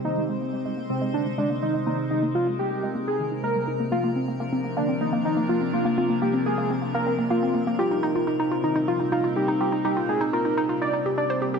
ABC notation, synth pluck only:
X:1
M:4/4
L:1/16
Q:1/4=124
K:Ablyd
V:1 name="Synth pluck"
B, A, A, B, A, A, B, A, A, B, A, A, B, A, A, B, | A, A, B, A, A, B, A, A, B, A, E, E A, G, E B, | B, B, C B, B, C B, B, C B, B, C B, B, C B, | B, C B, B, C B, B, C B, B, C B, B, C B, B, |
F E E F E E F E E F E E F E E F | E E F E E F E E F E E G D c G G |]